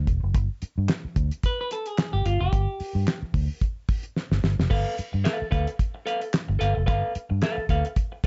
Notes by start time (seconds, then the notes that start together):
0.07 E1, kick, closed hi-hat
0.23 F#1
0.34 G1, kick, closed hi-hat
0.62 muted fingered electric bass stroke, closed hi-hat
0.78 G2
0.88 snare, clap, closed hi-hat
1.05 muted fingered electric bass stroke
1.16 D2, kick, closed hi-hat
1.31 closed hi-hat
1.43 B4, kick, closed hi-hat
1.61 B4
1.71 A4, closed hi-hat
1.86 G#4, closed hi-hat
1.97 snare, clap, closed hi-hat
2.13 G1 G4
2.25 G1 F4, closed hi-hat
2.41 F1 G4
2.53 G1, kick, closed hi-hat
2.80 muted fingered electric bass stroke, open hi-hat
2.95 G2
3.07 snare, clap, closed hi-hat
3.22 muted fingered electric bass stroke
3.34 D2, kick, open hi-hat
3.61 kick, closed hi-hat
3.89 kick, open hi-hat
4.03 closed hi-hat
4.16 snare
4.31 G1, snare
4.43 G1, snare
4.59 F1, snare
4.70 G1 A4 B4 F5, kick, crash
4.98 muted fingered electric bass stroke, closed hi-hat
5.13 G2, muted clean electric guitar stroke
5.24 A4 B4 F5, snare, clap, closed hi-hat
5.38 muted clean electric guitar stroke, muted fingered electric bass stroke
5.51 D2 A4 B4 F5, kick, closed hi-hat
5.67 muted clean electric guitar stroke, closed hi-hat
5.79 kick, closed hi-hat
5.95 muted clean electric guitar stroke
6.06 A4 B4 F5, closed hi-hat
6.21 muted clean electric guitar stroke, closed hi-hat
6.33 snare, clap, closed hi-hat
6.49 G1, muted clean electric guitar stroke
6.59 G1 A4 B4 F5, closed hi-hat
6.75 F1, muted clean electric guitar stroke
6.86 G1 A4 B4 F5, kick, closed hi-hat
7.15 muted fingered electric bass stroke, closed hi-hat
7.30 G2, muted clean electric guitar stroke
7.42 A4 B4 F5, snare, clap, closed hi-hat
7.57 muted clean electric guitar stroke, muted fingered electric bass stroke
7.69 D2 A4 B4 F5, kick, closed hi-hat
7.85 muted clean electric guitar stroke, closed hi-hat
7.96 kick, closed hi-hat
8.12 muted clean electric guitar stroke